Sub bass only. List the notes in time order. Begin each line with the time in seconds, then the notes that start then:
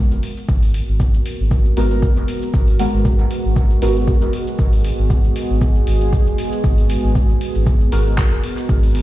0.11 F#1
0.49 G#1
0.88 G#1
1.40 G#1
1.77 G#1
2.17 F#1
2.54 G#1
2.93 G#1
3.45 G#1
3.82 G#1
4.22 F#1
4.59 G#1
4.99 G#1
5.50 G#1
5.87 G#1
6.27 F#1
6.64 G#1
7.04 G#1
7.55 G#1
7.92 G#1
8.32 F#1
8.69 G#1